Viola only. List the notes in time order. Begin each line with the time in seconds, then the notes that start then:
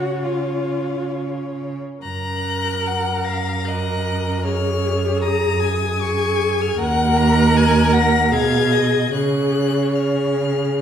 Already playing: F#4
0.24 F4
2.03 A#4
3.66 A#4
4.44 G#4
6.01 G#4
6.80 A#4
8.32 G#4
9.12 G#4
9.93 G#4